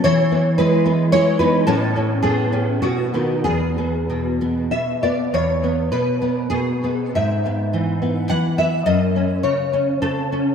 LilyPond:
\new Staff \with { instrumentName = "Nylon-string guitar" } { \time 3/4 \key e \major \tempo 4 = 104 << { <e' cis''>4 <e' b'>4 <e' cis''>8 <dis' b'>8 | <cis' a'>4 <b gis'>4 <b fis'>4 | <b gis'>2 e''8 d''8 | cis''4 b'4 gis'4 |
e''4. r8 fis''8 e''8 | dis''4 cis''4 a'4 | } \\ { e8 b8 gis8 b8 gis8 b8 | a,8 cis'8 a8 cis'8 b,8 <dis b>8 | e,8 b8 b,8 b8 b,8 b8 | e,8 b8 b,8 b8 b,8 b8 |
gis,8 b8 e8 b8 e8 b8 | fis,8 cis'8 cis8 cis'8 cis8 cis'8 | } >> }